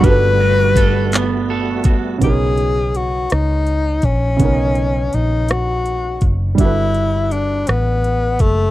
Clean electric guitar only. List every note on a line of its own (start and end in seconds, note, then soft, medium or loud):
0.00 2.22 G3 medium
0.00 1.13 B3 medium
0.00 0.40 F#4 medium
0.00 0.76 A4 medium
0.40 1.85 F#4 medium
0.77 1.49 A4 medium
1.14 2.80 B3 medium
1.50 2.30 A4 medium
1.86 2.79 F#4 medium